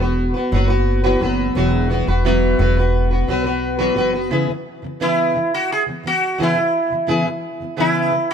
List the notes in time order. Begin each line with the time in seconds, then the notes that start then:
Already playing: E1
0.00 B3 F#4 B4
0.34 B3 F#4 B4
0.52 F#1 F#3 B3 F#4 B4
0.68 B3 F#4 B4
1.04 E3 F#3 B3 F#4 B4
1.21 F#1 F#3 B3 F#4 B4
1.55 E1 E3 F#3 B3 F#4 B4
1.90 F#3 B3 F#4 B4
2.07 E1 B3 F#4 B4
2.25 E3 F#3 B3 F#4 B4
2.59 E1 F#3 B3 F#4 B4
2.77 B3 F#4 B4
3.11 B3 F#4 B4
3.28 B1 F#3 B3 F#4 B4
3.44 B3 F#4 B4
3.79 E3 F#3 B3 F#4 B4
3.95 F#1 F#3 B3 F#4 B4
4.13 B3 F#4 B4
4.31 C#3 E3 B3 E4 G#4 B4
4.47 C#3 E3 B3
4.82 C#3 E3 B3
5.00 C#3 E3 B3 E4 G#4 B4
5.34 C#3 E3 B3
5.54 F#4
5.72 G#4
5.86 C#3 E3 B3
6.03 C#3 E3 B3 F#4
6.38 C#3 E3 B3 E4 G#4 B4
6.43 E4
6.55 C#3 E3 B3
6.90 C#3 E3 B3
7.07 C#3 E3 B3 E4 G#4 B4
7.25 C#3 E3 B3
7.60 C#3 E3 B3
7.77 C#3 E3 B3 E4 G#4 B4
8.12 C#3 E3 B3
8.31 F#4